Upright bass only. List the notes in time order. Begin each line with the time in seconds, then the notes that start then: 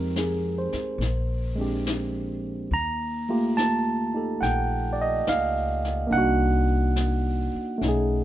Already playing: F2
0.73 muted upright bass stroke
0.98 A#1
2.71 D#2
4.42 A#1
5.28 C#2
6.11 C2
7.55 muted upright bass stroke
7.81 B1